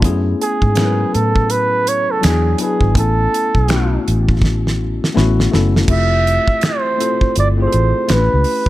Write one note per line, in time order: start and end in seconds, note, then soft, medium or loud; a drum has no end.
0.02 0.33 F#2 loud
0.02 0.68 A3 medium
0.02 0.69 B3 medium
0.02 0.69 C#4 medium
0.02 0.69 E4 medium
0.02 0.70 G#4 medium
0.02 kick loud
0.02 closed hi-hat loud
0.41 1.16 G#4 medium
0.41 closed hi-hat medium
0.62 1.04 G#2 medium
0.62 kick medium
0.75 2.06 F#3 medium
0.75 2.06 B3 medium
0.75 2.07 C#4 medium
0.75 2.07 E4 medium
0.75 0.86 A#4 medium
0.75 finger snap medium
0.75 snare loud
0.75 closed hi-hat medium
0.85 2.11 B4 medium
1.14 2.06 A2 medium
1.14 1.53 A4 loud
1.14 closed hi-hat medium
1.36 kick medium
1.50 1.90 B4 loud
1.50 closed hi-hat medium
1.87 2.13 C#5 loud
1.87 closed hi-hat medium
2.11 2.26 A4 medium
2.21 2.54 E2 loud
2.21 2.55 F#3 medium
2.21 2.55 B3 medium
2.21 2.55 D4 medium
2.21 2.56 E4 medium
2.21 2.60 G#4 medium
2.21 2.56 G#4 medium
2.21 finger snap medium
2.21 snare loud
2.21 closed hi-hat medium
2.58 2.91 F#3 medium
2.58 2.92 B3 medium
2.58 2.92 D4 medium
2.58 2.93 E4 medium
2.58 2.94 G#4 medium
2.58 2.93 B4 medium
2.58 closed hi-hat medium
2.81 2.93 G#1 medium
2.81 kick medium
2.95 3.26 A1 loud
2.95 3.61 A3 medium
2.95 3.61 B3 medium
2.95 3.62 C#4 medium
2.95 3.62 E4 medium
2.95 4.03 A4 loud
2.95 3.62 G#5 medium
2.95 kick loud
2.95 closed hi-hat loud
3.34 closed hi-hat medium
3.55 3.97 B1 medium
3.55 kick medium
3.68 4.99 A3 medium
3.68 4.99 B3 medium
3.68 4.99 C#4 medium
3.68 5.00 E4 medium
3.68 5.00 F#4 medium
3.68 finger snap medium
3.68 snare loud
3.68 closed hi-hat medium
4.08 4.99 A1 medium
4.08 closed hi-hat medium
4.29 kick medium
4.42 kick medium
4.42 snare medium
4.67 snare medium
5.04 snare medium
5.14 5.46 A1 loud
5.14 5.47 A3 medium
5.14 5.48 B3 medium
5.14 5.48 C#4 medium
5.14 5.49 E4 medium
5.14 5.49 F#4 loud
5.14 snare medium
5.40 snare medium
5.51 5.83 F#1 medium
5.51 5.84 A3 medium
5.51 5.85 B3 medium
5.51 5.85 C#4 medium
5.51 5.86 E4 medium
5.51 5.86 A4 medium
5.51 snare medium
5.76 snare medium
5.88 6.37 F1 loud
5.88 6.86 A3 medium
5.88 6.87 C4 medium
5.88 6.87 E4 medium
5.88 6.88 F4 medium
5.88 6.88 G4 medium
5.88 6.67 E5 loud
5.88 kick loud
5.88 crash medium
6.27 closed hi-hat medium
6.48 kick medium
6.61 7.36 C5 loud
6.61 finger snap medium
6.61 snare medium
6.61 closed hi-hat medium
6.97 7.48 A3 medium
6.97 7.48 C4 medium
6.97 7.48 E4 medium
6.97 7.49 F4 medium
6.97 7.49 A4 medium
6.97 closed hi-hat medium
7.21 kick medium
7.36 7.66 G1 medium
7.36 7.48 D5 medium
7.36 closed hi-hat medium
7.57 8.06 A3 medium
7.57 8.07 C4 medium
7.57 8.08 E4 medium
7.57 8.09 F4 medium
7.57 7.64 G#4 medium
7.62 8.14 C5 medium
7.67 8.12 A4 medium
7.72 7.92 A1 medium
7.72 closed hi-hat medium
8.07 8.28 A1 medium
8.07 8.69 A3 medium
8.07 8.16 C4 medium
8.07 8.69 E4 medium
8.07 8.69 G4 medium
8.07 8.69 B4 medium
8.07 finger snap medium
8.07 snare loud
8.07 closed hi-hat medium
8.13 8.69 C#4 medium
8.13 8.69 B4 medium
8.34 8.44 C#2 medium
8.44 open hi-hat soft